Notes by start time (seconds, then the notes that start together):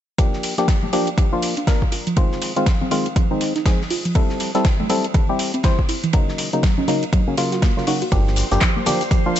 0.18 F3 A#3 D4 G4, kick, closed hi-hat, ride
0.33 snare
0.43 open hi-hat, ride
0.58 F3 A#3 D4 G4, snare, closed hi-hat
0.68 F3, kick, snare, closed hi-hat, ride
0.83 A#3, high conga
0.93 F3 A#3 D4 G4, open hi-hat, ride
1.07 closed hi-hat, ride
1.18 F3, kick, closed hi-hat, ride
1.32 F3 A#3 D4 F4
1.42 open hi-hat, ride
1.57 D4, closed hi-hat, ride
1.67 F3 A#3 D4 A#4, kick, snare, closed hi-hat, ride
1.82 kick
1.92 F4, open hi-hat, ride
2.07 F3, closed hi-hat, ride
2.16 D#3 G#3 C4 F4, kick, closed hi-hat, ride
2.31 snare
2.42 open hi-hat, ride
2.56 D#3 G#3 C4 F4, closed hi-hat
2.66 F3, kick, snare, closed hi-hat, ride
2.81 C4, high conga
2.91 D#3 G#3 C4 F4, open hi-hat, ride
3.06 closed hi-hat, ride
3.16 F3, kick, closed hi-hat, ride
3.31 D#3 G#3 C4 D#4
3.41 snare, open hi-hat, ride
3.56 D#4, snare, closed hi-hat
3.66 D#3 F3 G#3 C4 G#4, kick, snare, closed hi-hat, ride
3.81 snare
3.90 F4, open hi-hat
4.05 F3, closed hi-hat
4.15 G3 C4 E4 A4, kick, closed hi-hat, ride
4.29 snare
4.40 open hi-hat, ride
4.55 G3 C4 E4 A4, snare, closed hi-hat
4.65 E3, kick, snare, closed hi-hat, ride
4.80 A3, high conga
4.89 G3 C4 E4 A4, open hi-hat, ride
5.04 closed hi-hat, ride
5.14 E3, kick, closed hi-hat, ride
5.29 G3 C4 E4 G4
5.39 open hi-hat, ride
5.54 C4, closed hi-hat, ride
5.63 E3 G3 C4 E4 C5, kick, snare, closed hi-hat, ride
5.79 kick
5.89 E4, open hi-hat, ride
6.04 E3, closed hi-hat, ride
6.13 C#3 F#3 A#3 D#4, kick, closed hi-hat, ride
6.28 snare
6.38 open hi-hat, ride
6.53 C#3 F#3 A#3 D#4, closed hi-hat
6.63 F#3, kick, snare, closed hi-hat, ride
6.78 C#4, high conga
6.88 C#3 F#3 A#3 D#4, open hi-hat, ride
7.03 closed hi-hat, ride
7.13 F#3, kick, closed hi-hat, ride
7.27 C#3 F#3 A#3 C#4
7.37 C#3 F#3 A#3 F4, snare, open hi-hat, ride
7.52 F#4, snare, closed hi-hat
7.62 A#3, kick, snare, closed hi-hat, ride
7.77 C#3 F#3 A#3 F4, snare
7.87 C#3 F#3 A#3 D#4 F#4, open hi-hat
8.02 F#4, closed hi-hat
8.12 G1 F3 A#3 D4 G4 C5 C6, kick, closed hi-hat, ride, maracas
8.27 snare
8.36 open hi-hat, ride, maracas
8.51 G1 F3 A#3 D4 G4, snare, closed hi-hat, maracas
8.61 F3, kick, snare, clap, closed hi-hat, ride, maracas
8.76 A#3, high conga
8.86 F3 A#3 D4 G4, open hi-hat, ride, low conga, maracas
9.01 closed hi-hat, ride, maracas
9.11 F3, kick, closed hi-hat, ride, maracas
9.26 F3 A#3 D4 F4
9.36 open hi-hat, ride, maracas